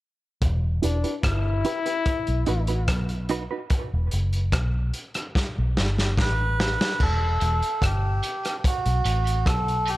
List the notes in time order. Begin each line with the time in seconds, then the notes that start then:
0.42 E1, kick, closed hi-hat
0.82 E1 D4 E4 G4 B4, closed hi-hat
1.04 E4 G4 B4, closed hi-hat
1.23 G1 E4, kick, cross-stick, closed hi-hat
1.65 E4 G4 B4, closed hi-hat
1.86 E4 G4 B4, closed hi-hat
2.06 kick, closed hi-hat
2.27 B1, closed hi-hat
2.46 A1 D#4 F#4 B4, closed hi-hat
2.67 D#4 F#4 B4, closed hi-hat
2.88 B1, kick, cross-stick, closed hi-hat
3.09 closed hi-hat
3.29 D#4 F#4 B4, closed hi-hat
3.51 D#4 F#4 B4
3.70 kick, closed hi-hat
3.93 E1
4.11 F#1, closed hi-hat
4.33 closed hi-hat
4.52 B1, kick, cross-stick, closed hi-hat
4.94 closed hi-hat
5.14 cross-stick, closed hi-hat
5.35 kick, snare
5.58 B1
5.77 G1, snare
5.98 snare
6.18 A1 B4, kick, snare
6.60 snare
6.81 snare
7.00 E1 E4 A4, kick, crash
7.40 E1 E4 G4 B4, closed hi-hat
7.62 E4 G4 B4, closed hi-hat
7.81 G1 E4 G4, kick, cross-stick, closed hi-hat
8.22 D4 E4 G4 B4, closed hi-hat
8.44 E4 G4 B4, cross-stick, closed hi-hat
8.58 G4
8.64 D#4 F#4, kick, closed hi-hat
8.86 B1, closed hi-hat
9.05 A1 D#4 F#4 B4, closed hi-hat
9.24 D#4 F#4 B4, closed hi-hat
9.46 B1 A4, kick, cross-stick, closed hi-hat
9.68 closed hi-hat
9.86 D#4 F#4 G4 B4, closed hi-hat